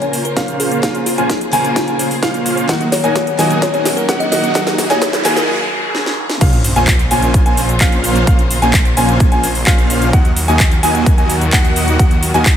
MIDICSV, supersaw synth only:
0, 0, Header, 1, 2, 480
1, 0, Start_track
1, 0, Key_signature, -5, "minor"
1, 0, Tempo, 465116
1, 858, Time_signature, 4, 2, 24, 8
1, 12970, End_track
2, 0, Start_track
2, 0, Title_t, "Supersaw synth"
2, 0, Program_c, 0, 81
2, 16, Note_on_c, 0, 65, 70
2, 17, Note_on_c, 0, 58, 79
2, 17, Note_on_c, 0, 61, 69
2, 17, Note_on_c, 0, 72, 69
2, 17, Note_on_c, 0, 80, 86
2, 170, Note_off_c, 0, 58, 0
2, 170, Note_off_c, 0, 61, 0
2, 170, Note_off_c, 0, 65, 0
2, 170, Note_off_c, 0, 72, 0
2, 170, Note_off_c, 0, 80, 0
2, 376, Note_on_c, 0, 58, 94
2, 376, Note_on_c, 0, 61, 89
2, 376, Note_on_c, 0, 65, 87
2, 376, Note_on_c, 0, 72, 84
2, 376, Note_on_c, 0, 77, 102
2, 828, Note_off_c, 0, 58, 0
2, 828, Note_off_c, 0, 61, 0
2, 828, Note_off_c, 0, 65, 0
2, 828, Note_off_c, 0, 72, 0
2, 828, Note_off_c, 0, 77, 0
2, 856, Note_on_c, 0, 58, 76
2, 856, Note_on_c, 0, 65, 74
2, 856, Note_on_c, 0, 72, 72
2, 857, Note_on_c, 0, 61, 71
2, 857, Note_on_c, 0, 77, 87
2, 1010, Note_off_c, 0, 58, 0
2, 1010, Note_off_c, 0, 61, 0
2, 1010, Note_off_c, 0, 65, 0
2, 1010, Note_off_c, 0, 72, 0
2, 1010, Note_off_c, 0, 77, 0
2, 1216, Note_on_c, 0, 58, 85
2, 1216, Note_on_c, 0, 72, 78
2, 1217, Note_on_c, 0, 61, 80
2, 1217, Note_on_c, 0, 65, 81
2, 1217, Note_on_c, 0, 80, 100
2, 1370, Note_off_c, 0, 58, 0
2, 1370, Note_off_c, 0, 61, 0
2, 1370, Note_off_c, 0, 65, 0
2, 1370, Note_off_c, 0, 72, 0
2, 1370, Note_off_c, 0, 80, 0
2, 1576, Note_on_c, 0, 58, 92
2, 1576, Note_on_c, 0, 61, 84
2, 1576, Note_on_c, 0, 65, 83
2, 1576, Note_on_c, 0, 72, 81
2, 1576, Note_on_c, 0, 80, 102
2, 1908, Note_off_c, 0, 58, 0
2, 1908, Note_off_c, 0, 61, 0
2, 1908, Note_off_c, 0, 65, 0
2, 1908, Note_off_c, 0, 72, 0
2, 1908, Note_off_c, 0, 80, 0
2, 1935, Note_on_c, 0, 65, 71
2, 1936, Note_on_c, 0, 58, 82
2, 1936, Note_on_c, 0, 61, 71
2, 1936, Note_on_c, 0, 72, 73
2, 1936, Note_on_c, 0, 80, 88
2, 2089, Note_off_c, 0, 58, 0
2, 2089, Note_off_c, 0, 61, 0
2, 2089, Note_off_c, 0, 65, 0
2, 2089, Note_off_c, 0, 72, 0
2, 2089, Note_off_c, 0, 80, 0
2, 2296, Note_on_c, 0, 58, 90
2, 2296, Note_on_c, 0, 61, 87
2, 2296, Note_on_c, 0, 65, 90
2, 2296, Note_on_c, 0, 72, 85
2, 2297, Note_on_c, 0, 77, 103
2, 2748, Note_off_c, 0, 58, 0
2, 2748, Note_off_c, 0, 61, 0
2, 2748, Note_off_c, 0, 65, 0
2, 2748, Note_off_c, 0, 72, 0
2, 2748, Note_off_c, 0, 77, 0
2, 2775, Note_on_c, 0, 58, 77
2, 2775, Note_on_c, 0, 63, 74
2, 2775, Note_on_c, 0, 66, 74
2, 2775, Note_on_c, 0, 75, 72
2, 2775, Note_on_c, 0, 78, 84
2, 2929, Note_off_c, 0, 58, 0
2, 2929, Note_off_c, 0, 63, 0
2, 2929, Note_off_c, 0, 66, 0
2, 2929, Note_off_c, 0, 75, 0
2, 2929, Note_off_c, 0, 78, 0
2, 3135, Note_on_c, 0, 58, 85
2, 3135, Note_on_c, 0, 63, 82
2, 3135, Note_on_c, 0, 75, 79
2, 3135, Note_on_c, 0, 80, 97
2, 3136, Note_on_c, 0, 66, 79
2, 3289, Note_off_c, 0, 58, 0
2, 3289, Note_off_c, 0, 63, 0
2, 3289, Note_off_c, 0, 66, 0
2, 3289, Note_off_c, 0, 75, 0
2, 3289, Note_off_c, 0, 80, 0
2, 3497, Note_on_c, 0, 58, 94
2, 3497, Note_on_c, 0, 63, 84
2, 3497, Note_on_c, 0, 66, 84
2, 3497, Note_on_c, 0, 75, 88
2, 3497, Note_on_c, 0, 80, 98
2, 3828, Note_off_c, 0, 58, 0
2, 3828, Note_off_c, 0, 63, 0
2, 3828, Note_off_c, 0, 75, 0
2, 3828, Note_off_c, 0, 80, 0
2, 3829, Note_off_c, 0, 66, 0
2, 3856, Note_on_c, 0, 58, 81
2, 3856, Note_on_c, 0, 63, 71
2, 3856, Note_on_c, 0, 66, 75
2, 3856, Note_on_c, 0, 75, 72
2, 3856, Note_on_c, 0, 80, 86
2, 4010, Note_off_c, 0, 58, 0
2, 4010, Note_off_c, 0, 63, 0
2, 4010, Note_off_c, 0, 66, 0
2, 4010, Note_off_c, 0, 75, 0
2, 4010, Note_off_c, 0, 80, 0
2, 4216, Note_on_c, 0, 66, 91
2, 4216, Note_on_c, 0, 78, 101
2, 4217, Note_on_c, 0, 58, 98
2, 4217, Note_on_c, 0, 63, 89
2, 4217, Note_on_c, 0, 75, 87
2, 4668, Note_off_c, 0, 58, 0
2, 4668, Note_off_c, 0, 63, 0
2, 4668, Note_off_c, 0, 66, 0
2, 4668, Note_off_c, 0, 75, 0
2, 4668, Note_off_c, 0, 78, 0
2, 4696, Note_on_c, 0, 58, 76
2, 4696, Note_on_c, 0, 63, 72
2, 4696, Note_on_c, 0, 66, 72
2, 4696, Note_on_c, 0, 75, 74
2, 4696, Note_on_c, 0, 78, 89
2, 4849, Note_off_c, 0, 66, 0
2, 4849, Note_off_c, 0, 78, 0
2, 4850, Note_off_c, 0, 58, 0
2, 4850, Note_off_c, 0, 63, 0
2, 4850, Note_off_c, 0, 75, 0
2, 5057, Note_on_c, 0, 58, 89
2, 5057, Note_on_c, 0, 63, 86
2, 5057, Note_on_c, 0, 66, 83
2, 5057, Note_on_c, 0, 75, 82
2, 5057, Note_on_c, 0, 80, 101
2, 5210, Note_off_c, 0, 58, 0
2, 5210, Note_off_c, 0, 63, 0
2, 5210, Note_off_c, 0, 66, 0
2, 5210, Note_off_c, 0, 75, 0
2, 5210, Note_off_c, 0, 80, 0
2, 5416, Note_on_c, 0, 66, 87
2, 5416, Note_on_c, 0, 75, 89
2, 5417, Note_on_c, 0, 58, 95
2, 5417, Note_on_c, 0, 63, 85
2, 5417, Note_on_c, 0, 80, 99
2, 5657, Note_off_c, 0, 58, 0
2, 5657, Note_off_c, 0, 63, 0
2, 5657, Note_off_c, 0, 66, 0
2, 5657, Note_off_c, 0, 75, 0
2, 5657, Note_off_c, 0, 80, 0
2, 6617, Note_on_c, 0, 58, 82
2, 6618, Note_on_c, 0, 61, 72
2, 6618, Note_on_c, 0, 65, 73
2, 6618, Note_on_c, 0, 72, 73
2, 6618, Note_on_c, 0, 77, 86
2, 6770, Note_off_c, 0, 58, 0
2, 6770, Note_off_c, 0, 61, 0
2, 6770, Note_off_c, 0, 65, 0
2, 6770, Note_off_c, 0, 72, 0
2, 6770, Note_off_c, 0, 77, 0
2, 6977, Note_on_c, 0, 58, 92
2, 6977, Note_on_c, 0, 61, 84
2, 6977, Note_on_c, 0, 65, 82
2, 6977, Note_on_c, 0, 72, 82
2, 6977, Note_on_c, 0, 80, 99
2, 7130, Note_off_c, 0, 58, 0
2, 7130, Note_off_c, 0, 61, 0
2, 7130, Note_off_c, 0, 65, 0
2, 7130, Note_off_c, 0, 72, 0
2, 7130, Note_off_c, 0, 80, 0
2, 7336, Note_on_c, 0, 61, 84
2, 7337, Note_on_c, 0, 58, 92
2, 7337, Note_on_c, 0, 65, 87
2, 7337, Note_on_c, 0, 72, 85
2, 7337, Note_on_c, 0, 80, 105
2, 7668, Note_off_c, 0, 58, 0
2, 7668, Note_off_c, 0, 61, 0
2, 7668, Note_off_c, 0, 65, 0
2, 7668, Note_off_c, 0, 72, 0
2, 7668, Note_off_c, 0, 80, 0
2, 7697, Note_on_c, 0, 72, 75
2, 7698, Note_on_c, 0, 58, 78
2, 7698, Note_on_c, 0, 61, 76
2, 7698, Note_on_c, 0, 65, 73
2, 7698, Note_on_c, 0, 80, 89
2, 7850, Note_off_c, 0, 58, 0
2, 7850, Note_off_c, 0, 61, 0
2, 7850, Note_off_c, 0, 65, 0
2, 7850, Note_off_c, 0, 72, 0
2, 7850, Note_off_c, 0, 80, 0
2, 8057, Note_on_c, 0, 58, 97
2, 8057, Note_on_c, 0, 61, 87
2, 8057, Note_on_c, 0, 65, 89
2, 8057, Note_on_c, 0, 72, 88
2, 8057, Note_on_c, 0, 77, 102
2, 8508, Note_off_c, 0, 58, 0
2, 8508, Note_off_c, 0, 61, 0
2, 8508, Note_off_c, 0, 65, 0
2, 8508, Note_off_c, 0, 72, 0
2, 8508, Note_off_c, 0, 77, 0
2, 8536, Note_on_c, 0, 77, 86
2, 8537, Note_on_c, 0, 58, 82
2, 8537, Note_on_c, 0, 61, 75
2, 8537, Note_on_c, 0, 65, 74
2, 8537, Note_on_c, 0, 72, 74
2, 8690, Note_off_c, 0, 58, 0
2, 8690, Note_off_c, 0, 61, 0
2, 8690, Note_off_c, 0, 65, 0
2, 8690, Note_off_c, 0, 72, 0
2, 8690, Note_off_c, 0, 77, 0
2, 8896, Note_on_c, 0, 61, 82
2, 8896, Note_on_c, 0, 80, 101
2, 8897, Note_on_c, 0, 58, 91
2, 8897, Note_on_c, 0, 65, 82
2, 8897, Note_on_c, 0, 72, 84
2, 9050, Note_off_c, 0, 58, 0
2, 9050, Note_off_c, 0, 61, 0
2, 9050, Note_off_c, 0, 65, 0
2, 9050, Note_off_c, 0, 72, 0
2, 9050, Note_off_c, 0, 80, 0
2, 9256, Note_on_c, 0, 58, 98
2, 9256, Note_on_c, 0, 61, 84
2, 9256, Note_on_c, 0, 65, 86
2, 9256, Note_on_c, 0, 72, 89
2, 9256, Note_on_c, 0, 80, 103
2, 9588, Note_off_c, 0, 58, 0
2, 9588, Note_off_c, 0, 61, 0
2, 9588, Note_off_c, 0, 65, 0
2, 9588, Note_off_c, 0, 72, 0
2, 9588, Note_off_c, 0, 80, 0
2, 9616, Note_on_c, 0, 58, 81
2, 9616, Note_on_c, 0, 65, 73
2, 9616, Note_on_c, 0, 72, 76
2, 9616, Note_on_c, 0, 80, 89
2, 9617, Note_on_c, 0, 61, 75
2, 9769, Note_off_c, 0, 58, 0
2, 9769, Note_off_c, 0, 72, 0
2, 9770, Note_off_c, 0, 61, 0
2, 9770, Note_off_c, 0, 65, 0
2, 9770, Note_off_c, 0, 80, 0
2, 9977, Note_on_c, 0, 58, 96
2, 9977, Note_on_c, 0, 61, 90
2, 9977, Note_on_c, 0, 65, 85
2, 9977, Note_on_c, 0, 72, 91
2, 9977, Note_on_c, 0, 77, 107
2, 10428, Note_off_c, 0, 58, 0
2, 10428, Note_off_c, 0, 61, 0
2, 10428, Note_off_c, 0, 72, 0
2, 10428, Note_off_c, 0, 77, 0
2, 10429, Note_off_c, 0, 65, 0
2, 10457, Note_on_c, 0, 78, 91
2, 10458, Note_on_c, 0, 58, 80
2, 10458, Note_on_c, 0, 63, 74
2, 10458, Note_on_c, 0, 66, 73
2, 10458, Note_on_c, 0, 75, 74
2, 10610, Note_off_c, 0, 58, 0
2, 10610, Note_off_c, 0, 63, 0
2, 10610, Note_off_c, 0, 75, 0
2, 10610, Note_off_c, 0, 78, 0
2, 10611, Note_off_c, 0, 66, 0
2, 10817, Note_on_c, 0, 58, 89
2, 10817, Note_on_c, 0, 63, 85
2, 10817, Note_on_c, 0, 75, 83
2, 10818, Note_on_c, 0, 66, 82
2, 10818, Note_on_c, 0, 80, 99
2, 10970, Note_off_c, 0, 58, 0
2, 10970, Note_off_c, 0, 63, 0
2, 10970, Note_off_c, 0, 66, 0
2, 10970, Note_off_c, 0, 75, 0
2, 10970, Note_off_c, 0, 80, 0
2, 11178, Note_on_c, 0, 58, 96
2, 11178, Note_on_c, 0, 63, 86
2, 11178, Note_on_c, 0, 66, 87
2, 11178, Note_on_c, 0, 75, 82
2, 11178, Note_on_c, 0, 80, 105
2, 11509, Note_off_c, 0, 58, 0
2, 11509, Note_off_c, 0, 63, 0
2, 11509, Note_off_c, 0, 66, 0
2, 11509, Note_off_c, 0, 75, 0
2, 11509, Note_off_c, 0, 80, 0
2, 11537, Note_on_c, 0, 58, 82
2, 11537, Note_on_c, 0, 63, 75
2, 11537, Note_on_c, 0, 66, 72
2, 11537, Note_on_c, 0, 75, 76
2, 11537, Note_on_c, 0, 80, 90
2, 11690, Note_off_c, 0, 58, 0
2, 11690, Note_off_c, 0, 63, 0
2, 11690, Note_off_c, 0, 66, 0
2, 11690, Note_off_c, 0, 75, 0
2, 11690, Note_off_c, 0, 80, 0
2, 11898, Note_on_c, 0, 58, 96
2, 11898, Note_on_c, 0, 63, 88
2, 11898, Note_on_c, 0, 66, 86
2, 11899, Note_on_c, 0, 75, 91
2, 11899, Note_on_c, 0, 78, 108
2, 12349, Note_off_c, 0, 58, 0
2, 12349, Note_off_c, 0, 63, 0
2, 12349, Note_off_c, 0, 66, 0
2, 12349, Note_off_c, 0, 75, 0
2, 12349, Note_off_c, 0, 78, 0
2, 12377, Note_on_c, 0, 66, 74
2, 12377, Note_on_c, 0, 75, 76
2, 12378, Note_on_c, 0, 58, 81
2, 12378, Note_on_c, 0, 63, 75
2, 12378, Note_on_c, 0, 78, 88
2, 12530, Note_off_c, 0, 58, 0
2, 12530, Note_off_c, 0, 63, 0
2, 12530, Note_off_c, 0, 66, 0
2, 12530, Note_off_c, 0, 75, 0
2, 12530, Note_off_c, 0, 78, 0
2, 12737, Note_on_c, 0, 58, 89
2, 12737, Note_on_c, 0, 63, 86
2, 12737, Note_on_c, 0, 66, 83
2, 12737, Note_on_c, 0, 80, 98
2, 12738, Note_on_c, 0, 75, 82
2, 12890, Note_off_c, 0, 58, 0
2, 12890, Note_off_c, 0, 63, 0
2, 12890, Note_off_c, 0, 66, 0
2, 12890, Note_off_c, 0, 75, 0
2, 12890, Note_off_c, 0, 80, 0
2, 12970, End_track
0, 0, End_of_file